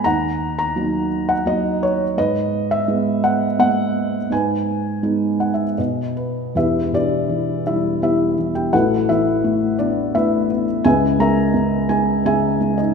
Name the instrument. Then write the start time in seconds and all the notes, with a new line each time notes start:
felt piano
0.04 D#2 F#5 A#5
0.59 A#5
0.76 F#3 A#3 D#4
1.29 F#5
1.46 F#3 A#3 D#4 D#5
1.83 C#5
2.17 G#2 B4 D#5
2.71 E5
2.88 G#3 B3
3.24 F#5
3.59 G#3 A#3 B3 F#5
4.30 G#2 B4 G#5
5.03 G#3 B3 D#4
5.40 F#5
5.54 E5
5.78 B2 D#5
6.17 B4
6.55 E1 E2 E4 G4 B4 E5
6.92 B2 D4 G4 D5
7.29 E3
7.67 G3 E4 E5
8.02 B3 E4 G4 E5
8.38 E3
8.55 G4 G5
8.73 A1 A2 F#4 A4 B4 F#5
9.09 E3 E4 B4 E5
9.44 A3
9.79 B3 D4 D5
10.15 A3 E4 B4 E5
10.50 B3
10.85 C#2 C#3 G#4 B4 E5 G#5
11.19 G#3 A#4 E5 A#5
11.54 C#3
11.89 G#3 G#4 G#5
12.25 C#3 G#4 E5 G#5
12.60 G#3
12.78 D#4 D#5